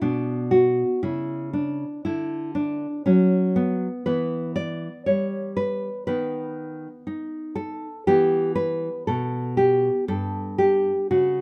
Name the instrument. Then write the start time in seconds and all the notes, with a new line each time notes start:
nylon-string guitar
0.01 B2 B3 D4
0.51 F#4
1.03 C#3 E4
1.53 D4
2.05 D3 E4
2.55 D4
3.06 F#3 C#4
3.56 B3
4.06 E3 B3 B4
4.56 D5
5.06 G3 C#5
5.57 B4
6.07 D#3 B3 B4
7.07 D#4
7.55 A4
8.07 E3 B3 G4
8.55 B4
9.07 B2 A4
9.57 G4
10.08 G2 A4
10.58 G4
11.11 C#3 F#4